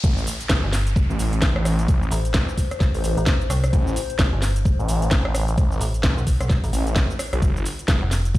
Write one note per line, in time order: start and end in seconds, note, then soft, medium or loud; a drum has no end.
0.04 0.25 A1 loud
0.04 kick loud
0.04 closed hi-hat medium
0.04 downlifter medium
0.04 shaker soft
0.18 shaker soft
0.27 open hi-hat loud
0.27 shaker medium
0.41 closed hi-hat medium
0.41 shaker soft
0.49 0.61 A1 loud
0.49 kick loud
0.49 snare loud
0.49 closed hi-hat medium
0.49 shaker soft
0.64 1.08 G1 loud
0.73 snare medium
0.73 open hi-hat loud
0.73 shaker medium
0.87 closed hi-hat medium
0.87 shaker soft
0.96 kick loud
0.96 shaker soft
1.10 1.18 A1 loud
1.10 shaker soft
1.19 1.41 A1 loud
1.19 open hi-hat loud
1.19 shaker medium
1.33 7.42 C5 loud
1.33 closed hi-hat medium
1.33 shaker soft
1.42 1.87 A1 loud
1.42 kick loud
1.42 snare loud
1.42 closed hi-hat medium
1.42 shaker soft
1.56 cross-stick medium
1.65 cross-stick medium
1.65 open hi-hat loud
1.65 shaker medium
1.79 closed hi-hat medium
1.79 shaker soft
1.88 2.10 A1 medium
1.88 kick loud
1.88 closed hi-hat medium
1.88 shaker soft
2.03 shaker soft
2.11 2.33 A1 loud
2.11 open hi-hat loud
2.11 shaker medium
2.25 closed hi-hat medium
2.25 shaker soft
2.34 2.46 A1 loud
2.34 kick loud
2.34 snare loud
2.34 closed hi-hat medium
2.34 shaker soft
2.49 shaker soft
2.58 kick medium
2.58 open hi-hat loud
2.58 shaker medium
2.71 cross-stick medium
2.71 closed hi-hat medium
2.71 shaker soft
2.80 kick loud
2.80 snare medium
2.80 shaker soft
2.94 3.02 A1 loud
2.94 open hi-hat medium
2.94 shaker soft
3.04 3.15 A1 loud
3.04 open hi-hat loud
3.04 shaker medium
3.17 3.48 A1 loud
3.17 closed hi-hat medium
3.17 shaker soft
3.26 kick loud
3.26 snare loud
3.26 closed hi-hat medium
3.26 shaker soft
3.41 shaker soft
3.50 3.72 C2 loud
3.50 cross-stick medium
3.50 open hi-hat loud
3.50 shaker medium
3.64 cross-stick medium
3.64 closed hi-hat medium
3.64 shaker soft
3.73 3.95 A1 loud
3.73 kick loud
3.73 closed hi-hat medium
3.73 shaker soft
3.87 shaker soft
3.96 open hi-hat loud
3.96 shaker medium
4.10 closed hi-hat medium
4.10 shaker soft
4.19 4.31 A1 loud
4.19 kick loud
4.19 snare loud
4.19 closed hi-hat medium
4.19 shaker soft
4.33 4.77 G1 loud
4.42 snare medium
4.42 open hi-hat loud
4.42 shaker medium
4.56 closed hi-hat medium
4.56 shaker soft
4.65 kick loud
4.65 shaker soft
4.79 4.87 A1 loud
4.79 shaker soft
4.88 5.10 A1 loud
4.88 open hi-hat loud
4.88 shaker medium
5.02 closed hi-hat medium
5.02 shaker soft
5.11 5.56 A1 loud
5.11 kick loud
5.11 snare loud
5.11 closed hi-hat medium
5.11 shaker soft
5.25 cross-stick medium
5.35 cross-stick medium
5.35 open hi-hat loud
5.35 shaker medium
5.48 closed hi-hat medium
5.48 shaker soft
5.58 5.79 A1 loud
5.58 kick loud
5.58 closed hi-hat medium
5.58 shaker soft
5.72 shaker soft
5.81 6.02 A1 loud
5.81 open hi-hat loud
5.81 shaker medium
5.94 closed hi-hat soft
5.94 shaker soft
6.03 6.15 A1 loud
6.03 kick loud
6.03 snare loud
6.03 closed hi-hat medium
6.03 shaker soft
6.17 6.38 B1 loud
6.17 shaker soft
6.27 kick medium
6.27 open hi-hat loud
6.27 shaker medium
6.41 6.61 B1 loud
6.41 cross-stick medium
6.41 closed hi-hat medium
6.41 shaker soft
6.50 kick loud
6.50 snare medium
6.50 shaker soft
6.64 6.72 A1 loud
6.64 open hi-hat medium
6.64 shaker soft
6.73 7.08 A1 loud
6.73 open hi-hat loud
6.73 shaker medium
6.87 closed hi-hat medium
6.87 shaker soft
6.96 kick loud
6.96 snare loud
6.96 closed hi-hat medium
6.96 shaker soft
7.10 shaker soft
7.19 cross-stick medium
7.19 open hi-hat loud
7.19 shaker medium
7.33 7.41 B1 loud
7.33 cross-stick medium
7.33 closed hi-hat medium
7.33 shaker soft
7.42 7.64 G1 loud
7.42 kick loud
7.42 closed hi-hat medium
7.42 shaker soft
7.57 shaker soft
7.65 open hi-hat loud
7.65 shaker medium
7.79 closed hi-hat soft
7.79 shaker soft
7.88 8.00 G1 loud
7.88 kick loud
7.88 snare loud
7.88 closed hi-hat medium
7.88 shaker soft
8.02 8.38 F1 medium
8.11 snare medium
8.11 open hi-hat loud
8.11 shaker medium
8.25 closed hi-hat medium
8.25 shaker soft
8.35 kick loud
8.35 shaker soft